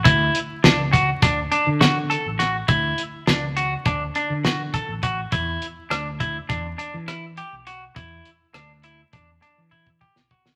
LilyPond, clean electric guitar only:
\new Staff \with { instrumentName = "Clean electric guitar" } { \time 9/8 \key d \major \tempo 4. = 68 e'4 d'8 fis'8 d'8 d'8 fis'8 a'8 fis'8 | e'4 d'8 fis'8 d'8 d'8 fis'8 a'8 fis'8 | e'4 d'8 e'8 d'8 d'8 e'8 g'8 fis'8 | e'4 d'8 e'8 d'8 d'8 e'8 g'8 fis'8 | }